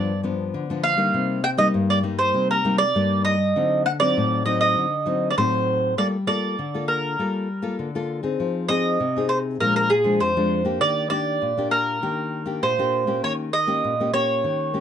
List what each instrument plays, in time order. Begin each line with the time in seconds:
Already playing: nylon-string guitar G2 F3 B3 D4, mandolin D5
0.23 nylon-string guitar F3 B3 D4
0.54 nylon-string guitar D3
0.70 nylon-string guitar F3 B3 D4
0.84 mandolin F5
0.97 nylon-string guitar G3 A#3 D#4
1.14 nylon-string guitar C3
1.44 mandolin G5
1.58 nylon-string guitar G3 A#3 D#4, mandolin D#5
1.74 nylon-string guitar G2
1.90 mandolin D5
2.03 nylon-string guitar G3 A#3 D#4
2.19 mandolin C5
2.34 nylon-string guitar C3
2.51 mandolin A#4
2.65 nylon-string guitar G3 A#3 D#4
2.78 mandolin D5
2.95 nylon-string guitar G2 G3 A#3 D#4
3.25 mandolin D#5
3.56 nylon-string guitar D3 F#3 C4 D#4
3.86 mandolin F#5
4.00 nylon-string guitar F#3 C4 D#4, mandolin D5
4.17 nylon-string guitar A2
4.46 nylon-string guitar F#3 C4 D#4, mandolin D#5
4.61 mandolin D#5
4.77 nylon-string guitar D3
5.06 nylon-string guitar F#3 C4 D#4
5.30 mandolin D5
5.37 nylon-string guitar A2 F#3 C4 D#4, mandolin C5
5.97 nylon-string guitar G3 A#3 F4 A4, mandolin D5
6.27 nylon-string guitar A#3 F4 A4, mandolin D5
6.59 nylon-string guitar D3
6.74 nylon-string guitar A#3 F4 A4
6.88 mandolin A#4
7.19 nylon-string guitar G3 A#3 F4 A4
7.62 nylon-string guitar A#3 F4 A4
7.79 nylon-string guitar D3
7.95 nylon-string guitar A#3 F4 A4
8.23 nylon-string guitar C4 D#4 G#4
8.40 nylon-string guitar F3
8.69 nylon-string guitar C4 D#4 G#4, mandolin D#5
9.00 nylon-string guitar C3
9.16 nylon-string guitar C4 D#4 G#4
9.29 mandolin C5
9.60 nylon-string guitar A#2 F3 G#3 D4, mandolin A#4
9.76 mandolin A#4
9.90 mandolin G#4
10.04 nylon-string guitar F3 G#3 D4
10.20 nylon-string guitar F2, mandolin C5
10.37 nylon-string guitar F3 G#3 D4
10.65 nylon-string guitar A#3 D4 G4
10.81 nylon-string guitar D#3, mandolin D5
11.10 nylon-string guitar A#3 D4 G4, mandolin D5
11.42 nylon-string guitar A#2
11.57 nylon-string guitar A#3 D4 G4
11.71 mandolin A#4
12.02 nylon-string guitar D#3 A#3 D4 G4
12.46 nylon-string guitar A#3 D4 G4
12.63 nylon-string guitar A#2, mandolin C5
12.79 nylon-string guitar A#3 D4 G4
13.07 nylon-string guitar A#3 C#4 G4
13.24 nylon-string guitar D#3, mandolin C#5
13.53 mandolin D#5
13.67 nylon-string guitar A#3 C#4 G4
13.84 nylon-string guitar A#2
14.00 nylon-string guitar A#3 C#4 G4
14.14 nylon-string guitar A#3 C#4 G4, mandolin C#5
14.44 nylon-string guitar D#3
14.74 nylon-string guitar A#3 C#4 G4